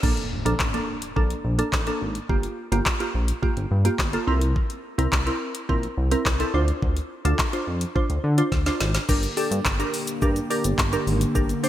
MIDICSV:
0, 0, Header, 1, 6, 480
1, 0, Start_track
1, 0, Tempo, 566038
1, 28, Time_signature, 4, 2, 24, 8
1, 9911, End_track
2, 0, Start_track
2, 0, Title_t, "Synth pluck"
2, 0, Program_c, 0, 84
2, 27, Note_on_c, 0, 58, 89
2, 29, Note_on_c, 0, 62, 81
2, 31, Note_on_c, 0, 69, 96
2, 272, Note_off_c, 0, 58, 0
2, 273, Note_off_c, 0, 62, 0
2, 274, Note_off_c, 0, 69, 0
2, 385, Note_on_c, 0, 58, 88
2, 388, Note_on_c, 0, 62, 81
2, 390, Note_on_c, 0, 69, 94
2, 550, Note_off_c, 0, 58, 0
2, 551, Note_off_c, 0, 62, 0
2, 552, Note_off_c, 0, 69, 0
2, 626, Note_on_c, 0, 58, 86
2, 627, Note_on_c, 0, 62, 75
2, 630, Note_on_c, 0, 69, 91
2, 872, Note_off_c, 0, 58, 0
2, 873, Note_off_c, 0, 62, 0
2, 874, Note_off_c, 0, 69, 0
2, 985, Note_on_c, 0, 58, 91
2, 987, Note_on_c, 0, 62, 83
2, 989, Note_on_c, 0, 69, 97
2, 1231, Note_off_c, 0, 58, 0
2, 1232, Note_off_c, 0, 62, 0
2, 1233, Note_off_c, 0, 69, 0
2, 1344, Note_on_c, 0, 58, 82
2, 1346, Note_on_c, 0, 62, 77
2, 1349, Note_on_c, 0, 69, 97
2, 1509, Note_off_c, 0, 58, 0
2, 1510, Note_off_c, 0, 62, 0
2, 1511, Note_off_c, 0, 69, 0
2, 1585, Note_on_c, 0, 58, 89
2, 1587, Note_on_c, 0, 62, 81
2, 1589, Note_on_c, 0, 69, 104
2, 1832, Note_off_c, 0, 58, 0
2, 1832, Note_off_c, 0, 62, 0
2, 1834, Note_off_c, 0, 69, 0
2, 1945, Note_on_c, 0, 58, 87
2, 1946, Note_on_c, 0, 65, 82
2, 1948, Note_on_c, 0, 67, 93
2, 2191, Note_off_c, 0, 58, 0
2, 2192, Note_off_c, 0, 65, 0
2, 2193, Note_off_c, 0, 67, 0
2, 2305, Note_on_c, 0, 58, 89
2, 2306, Note_on_c, 0, 65, 83
2, 2309, Note_on_c, 0, 67, 95
2, 2470, Note_off_c, 0, 58, 0
2, 2470, Note_off_c, 0, 65, 0
2, 2472, Note_off_c, 0, 67, 0
2, 2544, Note_on_c, 0, 58, 84
2, 2547, Note_on_c, 0, 65, 78
2, 2549, Note_on_c, 0, 67, 92
2, 2791, Note_off_c, 0, 58, 0
2, 2792, Note_off_c, 0, 65, 0
2, 2793, Note_off_c, 0, 67, 0
2, 2904, Note_on_c, 0, 58, 91
2, 2905, Note_on_c, 0, 65, 80
2, 2908, Note_on_c, 0, 67, 101
2, 3151, Note_off_c, 0, 58, 0
2, 3152, Note_off_c, 0, 65, 0
2, 3153, Note_off_c, 0, 67, 0
2, 3263, Note_on_c, 0, 58, 83
2, 3266, Note_on_c, 0, 65, 78
2, 3268, Note_on_c, 0, 67, 99
2, 3429, Note_off_c, 0, 58, 0
2, 3430, Note_off_c, 0, 65, 0
2, 3431, Note_off_c, 0, 67, 0
2, 3503, Note_on_c, 0, 58, 88
2, 3505, Note_on_c, 0, 65, 87
2, 3507, Note_on_c, 0, 69, 98
2, 3623, Note_on_c, 0, 60, 92
2, 3625, Note_off_c, 0, 58, 0
2, 3625, Note_on_c, 0, 64, 88
2, 3626, Note_off_c, 0, 65, 0
2, 3627, Note_off_c, 0, 69, 0
2, 3627, Note_on_c, 0, 70, 102
2, 4105, Note_off_c, 0, 60, 0
2, 4106, Note_off_c, 0, 64, 0
2, 4107, Note_off_c, 0, 70, 0
2, 4225, Note_on_c, 0, 60, 89
2, 4227, Note_on_c, 0, 64, 82
2, 4229, Note_on_c, 0, 70, 98
2, 4390, Note_off_c, 0, 60, 0
2, 4391, Note_off_c, 0, 64, 0
2, 4392, Note_off_c, 0, 70, 0
2, 4464, Note_on_c, 0, 60, 88
2, 4466, Note_on_c, 0, 64, 75
2, 4469, Note_on_c, 0, 70, 92
2, 4711, Note_off_c, 0, 60, 0
2, 4712, Note_off_c, 0, 64, 0
2, 4713, Note_off_c, 0, 70, 0
2, 4825, Note_on_c, 0, 60, 92
2, 4827, Note_on_c, 0, 64, 80
2, 4829, Note_on_c, 0, 70, 102
2, 5071, Note_off_c, 0, 60, 0
2, 5072, Note_off_c, 0, 64, 0
2, 5073, Note_off_c, 0, 70, 0
2, 5185, Note_on_c, 0, 60, 81
2, 5187, Note_on_c, 0, 64, 75
2, 5189, Note_on_c, 0, 70, 98
2, 5350, Note_off_c, 0, 60, 0
2, 5351, Note_off_c, 0, 64, 0
2, 5352, Note_off_c, 0, 70, 0
2, 5426, Note_on_c, 0, 60, 92
2, 5428, Note_on_c, 0, 64, 81
2, 5429, Note_on_c, 0, 69, 103
2, 5545, Note_on_c, 0, 62, 93
2, 5547, Note_off_c, 0, 60, 0
2, 5548, Note_off_c, 0, 64, 0
2, 5548, Note_on_c, 0, 65, 81
2, 5549, Note_off_c, 0, 69, 0
2, 5550, Note_on_c, 0, 72, 105
2, 6026, Note_off_c, 0, 62, 0
2, 6028, Note_off_c, 0, 65, 0
2, 6029, Note_off_c, 0, 72, 0
2, 6147, Note_on_c, 0, 62, 88
2, 6149, Note_on_c, 0, 65, 82
2, 6151, Note_on_c, 0, 69, 99
2, 6310, Note_off_c, 0, 62, 0
2, 6311, Note_off_c, 0, 65, 0
2, 6313, Note_off_c, 0, 69, 0
2, 6386, Note_on_c, 0, 62, 83
2, 6388, Note_on_c, 0, 65, 80
2, 6390, Note_on_c, 0, 72, 90
2, 6632, Note_off_c, 0, 62, 0
2, 6633, Note_off_c, 0, 65, 0
2, 6634, Note_off_c, 0, 72, 0
2, 6745, Note_on_c, 0, 62, 91
2, 6747, Note_on_c, 0, 65, 83
2, 6750, Note_on_c, 0, 72, 99
2, 6992, Note_off_c, 0, 62, 0
2, 6993, Note_off_c, 0, 65, 0
2, 6994, Note_off_c, 0, 72, 0
2, 7106, Note_on_c, 0, 62, 89
2, 7108, Note_on_c, 0, 65, 76
2, 7110, Note_on_c, 0, 72, 96
2, 7270, Note_off_c, 0, 62, 0
2, 7271, Note_off_c, 0, 65, 0
2, 7272, Note_off_c, 0, 72, 0
2, 7347, Note_on_c, 0, 62, 94
2, 7349, Note_on_c, 0, 65, 83
2, 7351, Note_on_c, 0, 72, 103
2, 7592, Note_off_c, 0, 62, 0
2, 7593, Note_off_c, 0, 65, 0
2, 7594, Note_off_c, 0, 72, 0
2, 7706, Note_on_c, 0, 62, 90
2, 7707, Note_on_c, 0, 67, 83
2, 7710, Note_on_c, 0, 70, 96
2, 7870, Note_off_c, 0, 62, 0
2, 7871, Note_off_c, 0, 67, 0
2, 7872, Note_off_c, 0, 70, 0
2, 7946, Note_on_c, 0, 62, 91
2, 7947, Note_on_c, 0, 67, 81
2, 7949, Note_on_c, 0, 69, 100
2, 8192, Note_off_c, 0, 62, 0
2, 8192, Note_off_c, 0, 67, 0
2, 8193, Note_off_c, 0, 69, 0
2, 8305, Note_on_c, 0, 62, 85
2, 8308, Note_on_c, 0, 67, 75
2, 8309, Note_on_c, 0, 70, 94
2, 8552, Note_off_c, 0, 62, 0
2, 8553, Note_off_c, 0, 67, 0
2, 8554, Note_off_c, 0, 70, 0
2, 8667, Note_on_c, 0, 62, 92
2, 8669, Note_on_c, 0, 67, 84
2, 8671, Note_on_c, 0, 70, 99
2, 8831, Note_off_c, 0, 62, 0
2, 8831, Note_off_c, 0, 67, 0
2, 8833, Note_off_c, 0, 70, 0
2, 8906, Note_on_c, 0, 62, 92
2, 8908, Note_on_c, 0, 67, 82
2, 8910, Note_on_c, 0, 70, 98
2, 9152, Note_off_c, 0, 62, 0
2, 9153, Note_off_c, 0, 67, 0
2, 9154, Note_off_c, 0, 70, 0
2, 9267, Note_on_c, 0, 62, 90
2, 9268, Note_on_c, 0, 67, 84
2, 9270, Note_on_c, 0, 70, 101
2, 9512, Note_off_c, 0, 62, 0
2, 9513, Note_off_c, 0, 67, 0
2, 9514, Note_off_c, 0, 70, 0
2, 9625, Note_on_c, 0, 62, 89
2, 9629, Note_on_c, 0, 67, 82
2, 9630, Note_on_c, 0, 70, 94
2, 9790, Note_off_c, 0, 62, 0
2, 9791, Note_off_c, 0, 67, 0
2, 9792, Note_off_c, 0, 70, 0
2, 9865, Note_on_c, 0, 62, 88
2, 9867, Note_on_c, 0, 67, 79
2, 9870, Note_on_c, 0, 72, 97
2, 9911, Note_off_c, 0, 62, 0
2, 9911, Note_off_c, 0, 67, 0
2, 9911, Note_off_c, 0, 72, 0
2, 9911, End_track
3, 0, Start_track
3, 0, Title_t, "Analog synth pad"
3, 0, Program_c, 1, 89
3, 7707, Note_on_c, 1, 58, 69
3, 7707, Note_on_c, 1, 67, 85
3, 7708, Note_on_c, 1, 50, 84
3, 9911, Note_off_c, 1, 50, 0
3, 9911, Note_off_c, 1, 58, 0
3, 9911, Note_off_c, 1, 67, 0
3, 9911, End_track
4, 0, Start_track
4, 0, Title_t, "Analog synth bass"
4, 0, Program_c, 2, 38
4, 27, Note_on_c, 2, 34, 109
4, 102, Note_off_c, 2, 34, 0
4, 387, Note_on_c, 2, 34, 87
4, 462, Note_off_c, 2, 34, 0
4, 507, Note_on_c, 2, 33, 105
4, 657, Note_off_c, 2, 33, 0
4, 988, Note_on_c, 2, 34, 106
4, 1137, Note_off_c, 2, 34, 0
4, 1227, Note_on_c, 2, 34, 100
4, 1377, Note_off_c, 2, 34, 0
4, 1464, Note_on_c, 2, 33, 93
4, 1615, Note_off_c, 2, 33, 0
4, 1706, Note_on_c, 2, 32, 87
4, 1856, Note_off_c, 2, 32, 0
4, 1946, Note_on_c, 2, 31, 95
4, 2096, Note_off_c, 2, 31, 0
4, 2306, Note_on_c, 2, 31, 106
4, 2381, Note_off_c, 2, 31, 0
4, 2666, Note_on_c, 2, 34, 86
4, 2816, Note_off_c, 2, 34, 0
4, 3026, Note_on_c, 2, 31, 102
4, 3101, Note_off_c, 2, 31, 0
4, 3146, Note_on_c, 2, 43, 97
4, 3296, Note_off_c, 2, 43, 0
4, 3384, Note_on_c, 2, 31, 92
4, 3535, Note_off_c, 2, 31, 0
4, 3626, Note_on_c, 2, 36, 101
4, 3851, Note_off_c, 2, 36, 0
4, 4227, Note_on_c, 2, 36, 94
4, 4302, Note_off_c, 2, 36, 0
4, 4347, Note_on_c, 2, 36, 90
4, 4497, Note_off_c, 2, 36, 0
4, 4828, Note_on_c, 2, 34, 100
4, 4978, Note_off_c, 2, 34, 0
4, 5067, Note_on_c, 2, 36, 101
4, 5217, Note_off_c, 2, 36, 0
4, 5305, Note_on_c, 2, 36, 92
4, 5455, Note_off_c, 2, 36, 0
4, 5546, Note_on_c, 2, 38, 99
4, 5696, Note_off_c, 2, 38, 0
4, 5787, Note_on_c, 2, 38, 102
4, 5937, Note_off_c, 2, 38, 0
4, 6147, Note_on_c, 2, 38, 97
4, 6222, Note_off_c, 2, 38, 0
4, 6507, Note_on_c, 2, 41, 89
4, 6657, Note_off_c, 2, 41, 0
4, 6867, Note_on_c, 2, 38, 99
4, 6942, Note_off_c, 2, 38, 0
4, 6986, Note_on_c, 2, 50, 107
4, 7136, Note_off_c, 2, 50, 0
4, 7224, Note_on_c, 2, 38, 91
4, 7375, Note_off_c, 2, 38, 0
4, 7466, Note_on_c, 2, 32, 88
4, 7616, Note_off_c, 2, 32, 0
4, 7707, Note_on_c, 2, 31, 99
4, 7857, Note_off_c, 2, 31, 0
4, 8067, Note_on_c, 2, 43, 101
4, 8142, Note_off_c, 2, 43, 0
4, 8188, Note_on_c, 2, 31, 96
4, 8337, Note_off_c, 2, 31, 0
4, 8668, Note_on_c, 2, 43, 111
4, 8817, Note_off_c, 2, 43, 0
4, 9027, Note_on_c, 2, 31, 91
4, 9102, Note_off_c, 2, 31, 0
4, 9145, Note_on_c, 2, 31, 86
4, 9296, Note_off_c, 2, 31, 0
4, 9388, Note_on_c, 2, 32, 87
4, 9538, Note_off_c, 2, 32, 0
4, 9629, Note_on_c, 2, 31, 107
4, 9778, Note_off_c, 2, 31, 0
4, 9911, End_track
5, 0, Start_track
5, 0, Title_t, "Impact"
5, 0, Program_c, 3, 103
5, 27, Note_on_c, 3, 60, 81
5, 1947, Note_off_c, 3, 60, 0
5, 9911, End_track
6, 0, Start_track
6, 0, Title_t, "Drums"
6, 28, Note_on_c, 9, 36, 112
6, 28, Note_on_c, 9, 49, 96
6, 112, Note_off_c, 9, 36, 0
6, 113, Note_off_c, 9, 49, 0
6, 146, Note_on_c, 9, 42, 48
6, 231, Note_off_c, 9, 42, 0
6, 390, Note_on_c, 9, 42, 72
6, 474, Note_off_c, 9, 42, 0
6, 506, Note_on_c, 9, 39, 117
6, 507, Note_on_c, 9, 36, 119
6, 511, Note_on_c, 9, 38, 94
6, 591, Note_off_c, 9, 39, 0
6, 592, Note_off_c, 9, 36, 0
6, 596, Note_off_c, 9, 38, 0
6, 627, Note_on_c, 9, 42, 48
6, 712, Note_off_c, 9, 42, 0
6, 864, Note_on_c, 9, 42, 77
6, 949, Note_off_c, 9, 42, 0
6, 988, Note_on_c, 9, 36, 116
6, 1073, Note_off_c, 9, 36, 0
6, 1106, Note_on_c, 9, 42, 50
6, 1191, Note_off_c, 9, 42, 0
6, 1346, Note_on_c, 9, 42, 75
6, 1431, Note_off_c, 9, 42, 0
6, 1464, Note_on_c, 9, 36, 114
6, 1466, Note_on_c, 9, 39, 114
6, 1471, Note_on_c, 9, 38, 93
6, 1549, Note_off_c, 9, 36, 0
6, 1551, Note_off_c, 9, 39, 0
6, 1556, Note_off_c, 9, 38, 0
6, 1584, Note_on_c, 9, 42, 48
6, 1669, Note_off_c, 9, 42, 0
6, 1824, Note_on_c, 9, 42, 58
6, 1909, Note_off_c, 9, 42, 0
6, 1946, Note_on_c, 9, 36, 112
6, 2031, Note_off_c, 9, 36, 0
6, 2064, Note_on_c, 9, 42, 47
6, 2149, Note_off_c, 9, 42, 0
6, 2308, Note_on_c, 9, 42, 70
6, 2393, Note_off_c, 9, 42, 0
6, 2425, Note_on_c, 9, 39, 116
6, 2426, Note_on_c, 9, 36, 117
6, 2430, Note_on_c, 9, 38, 98
6, 2510, Note_off_c, 9, 39, 0
6, 2511, Note_off_c, 9, 36, 0
6, 2514, Note_off_c, 9, 38, 0
6, 2546, Note_on_c, 9, 42, 48
6, 2631, Note_off_c, 9, 42, 0
6, 2783, Note_on_c, 9, 42, 79
6, 2868, Note_off_c, 9, 42, 0
6, 2907, Note_on_c, 9, 36, 112
6, 2992, Note_off_c, 9, 36, 0
6, 3027, Note_on_c, 9, 42, 50
6, 3111, Note_off_c, 9, 42, 0
6, 3265, Note_on_c, 9, 42, 76
6, 3350, Note_off_c, 9, 42, 0
6, 3384, Note_on_c, 9, 36, 115
6, 3385, Note_on_c, 9, 39, 114
6, 3390, Note_on_c, 9, 38, 90
6, 3469, Note_off_c, 9, 36, 0
6, 3470, Note_off_c, 9, 39, 0
6, 3475, Note_off_c, 9, 38, 0
6, 3505, Note_on_c, 9, 42, 49
6, 3589, Note_off_c, 9, 42, 0
6, 3744, Note_on_c, 9, 42, 56
6, 3829, Note_off_c, 9, 42, 0
6, 3867, Note_on_c, 9, 36, 114
6, 3952, Note_off_c, 9, 36, 0
6, 3985, Note_on_c, 9, 42, 49
6, 4070, Note_off_c, 9, 42, 0
6, 4229, Note_on_c, 9, 42, 70
6, 4314, Note_off_c, 9, 42, 0
6, 4347, Note_on_c, 9, 36, 119
6, 4347, Note_on_c, 9, 39, 120
6, 4352, Note_on_c, 9, 38, 96
6, 4432, Note_off_c, 9, 36, 0
6, 4432, Note_off_c, 9, 39, 0
6, 4437, Note_off_c, 9, 38, 0
6, 4467, Note_on_c, 9, 42, 48
6, 4552, Note_off_c, 9, 42, 0
6, 4704, Note_on_c, 9, 42, 82
6, 4788, Note_off_c, 9, 42, 0
6, 4828, Note_on_c, 9, 36, 114
6, 4913, Note_off_c, 9, 36, 0
6, 4946, Note_on_c, 9, 42, 49
6, 5031, Note_off_c, 9, 42, 0
6, 5186, Note_on_c, 9, 42, 77
6, 5270, Note_off_c, 9, 42, 0
6, 5305, Note_on_c, 9, 36, 114
6, 5307, Note_on_c, 9, 39, 117
6, 5312, Note_on_c, 9, 38, 91
6, 5390, Note_off_c, 9, 36, 0
6, 5392, Note_off_c, 9, 39, 0
6, 5397, Note_off_c, 9, 38, 0
6, 5426, Note_on_c, 9, 42, 49
6, 5511, Note_off_c, 9, 42, 0
6, 5665, Note_on_c, 9, 42, 55
6, 5750, Note_off_c, 9, 42, 0
6, 5787, Note_on_c, 9, 36, 113
6, 5872, Note_off_c, 9, 36, 0
6, 5907, Note_on_c, 9, 42, 48
6, 5991, Note_off_c, 9, 42, 0
6, 6149, Note_on_c, 9, 42, 67
6, 6234, Note_off_c, 9, 42, 0
6, 6266, Note_on_c, 9, 39, 116
6, 6267, Note_on_c, 9, 36, 117
6, 6271, Note_on_c, 9, 38, 95
6, 6351, Note_off_c, 9, 39, 0
6, 6352, Note_off_c, 9, 36, 0
6, 6356, Note_off_c, 9, 38, 0
6, 6388, Note_on_c, 9, 42, 46
6, 6472, Note_off_c, 9, 42, 0
6, 6624, Note_on_c, 9, 42, 81
6, 6709, Note_off_c, 9, 42, 0
6, 6748, Note_on_c, 9, 36, 117
6, 6833, Note_off_c, 9, 36, 0
6, 6867, Note_on_c, 9, 42, 48
6, 6951, Note_off_c, 9, 42, 0
6, 7106, Note_on_c, 9, 42, 77
6, 7191, Note_off_c, 9, 42, 0
6, 7225, Note_on_c, 9, 36, 113
6, 7227, Note_on_c, 9, 38, 59
6, 7309, Note_off_c, 9, 36, 0
6, 7312, Note_off_c, 9, 38, 0
6, 7345, Note_on_c, 9, 42, 50
6, 7347, Note_on_c, 9, 38, 65
6, 7430, Note_off_c, 9, 42, 0
6, 7432, Note_off_c, 9, 38, 0
6, 7467, Note_on_c, 9, 38, 89
6, 7552, Note_off_c, 9, 38, 0
6, 7585, Note_on_c, 9, 42, 58
6, 7587, Note_on_c, 9, 38, 82
6, 7670, Note_off_c, 9, 42, 0
6, 7672, Note_off_c, 9, 38, 0
6, 7707, Note_on_c, 9, 36, 121
6, 7708, Note_on_c, 9, 49, 101
6, 7708, Note_on_c, 9, 82, 74
6, 7792, Note_off_c, 9, 36, 0
6, 7792, Note_off_c, 9, 49, 0
6, 7793, Note_off_c, 9, 82, 0
6, 7826, Note_on_c, 9, 42, 49
6, 7826, Note_on_c, 9, 82, 49
6, 7911, Note_off_c, 9, 42, 0
6, 7911, Note_off_c, 9, 82, 0
6, 7947, Note_on_c, 9, 46, 81
6, 7947, Note_on_c, 9, 82, 58
6, 8031, Note_off_c, 9, 46, 0
6, 8031, Note_off_c, 9, 82, 0
6, 8070, Note_on_c, 9, 42, 70
6, 8070, Note_on_c, 9, 82, 68
6, 8155, Note_off_c, 9, 42, 0
6, 8155, Note_off_c, 9, 82, 0
6, 8187, Note_on_c, 9, 39, 126
6, 8187, Note_on_c, 9, 82, 76
6, 8188, Note_on_c, 9, 36, 121
6, 8192, Note_on_c, 9, 38, 94
6, 8272, Note_off_c, 9, 36, 0
6, 8272, Note_off_c, 9, 39, 0
6, 8272, Note_off_c, 9, 82, 0
6, 8277, Note_off_c, 9, 38, 0
6, 8308, Note_on_c, 9, 42, 49
6, 8308, Note_on_c, 9, 82, 48
6, 8393, Note_off_c, 9, 42, 0
6, 8393, Note_off_c, 9, 82, 0
6, 8427, Note_on_c, 9, 46, 83
6, 8427, Note_on_c, 9, 82, 58
6, 8511, Note_off_c, 9, 46, 0
6, 8511, Note_off_c, 9, 82, 0
6, 8544, Note_on_c, 9, 42, 80
6, 8544, Note_on_c, 9, 82, 84
6, 8628, Note_off_c, 9, 42, 0
6, 8628, Note_off_c, 9, 82, 0
6, 8665, Note_on_c, 9, 82, 79
6, 8668, Note_on_c, 9, 36, 121
6, 8750, Note_off_c, 9, 82, 0
6, 8752, Note_off_c, 9, 36, 0
6, 8786, Note_on_c, 9, 42, 51
6, 8786, Note_on_c, 9, 82, 51
6, 8871, Note_off_c, 9, 42, 0
6, 8871, Note_off_c, 9, 82, 0
6, 8909, Note_on_c, 9, 46, 69
6, 8909, Note_on_c, 9, 82, 51
6, 8994, Note_off_c, 9, 46, 0
6, 8994, Note_off_c, 9, 82, 0
6, 9026, Note_on_c, 9, 42, 77
6, 9026, Note_on_c, 9, 82, 78
6, 9111, Note_off_c, 9, 42, 0
6, 9111, Note_off_c, 9, 82, 0
6, 9145, Note_on_c, 9, 36, 112
6, 9147, Note_on_c, 9, 39, 127
6, 9147, Note_on_c, 9, 82, 72
6, 9152, Note_on_c, 9, 38, 98
6, 9230, Note_off_c, 9, 36, 0
6, 9232, Note_off_c, 9, 39, 0
6, 9232, Note_off_c, 9, 82, 0
6, 9237, Note_off_c, 9, 38, 0
6, 9267, Note_on_c, 9, 42, 51
6, 9267, Note_on_c, 9, 82, 49
6, 9351, Note_off_c, 9, 42, 0
6, 9351, Note_off_c, 9, 82, 0
6, 9390, Note_on_c, 9, 46, 55
6, 9390, Note_on_c, 9, 82, 42
6, 9475, Note_off_c, 9, 46, 0
6, 9475, Note_off_c, 9, 82, 0
6, 9507, Note_on_c, 9, 42, 61
6, 9507, Note_on_c, 9, 82, 56
6, 9592, Note_off_c, 9, 42, 0
6, 9592, Note_off_c, 9, 82, 0
6, 9628, Note_on_c, 9, 36, 116
6, 9628, Note_on_c, 9, 82, 72
6, 9713, Note_off_c, 9, 36, 0
6, 9713, Note_off_c, 9, 82, 0
6, 9747, Note_on_c, 9, 42, 51
6, 9747, Note_on_c, 9, 82, 48
6, 9832, Note_off_c, 9, 42, 0
6, 9832, Note_off_c, 9, 82, 0
6, 9868, Note_on_c, 9, 46, 81
6, 9868, Note_on_c, 9, 82, 59
6, 9911, Note_off_c, 9, 46, 0
6, 9911, Note_off_c, 9, 82, 0
6, 9911, End_track
0, 0, End_of_file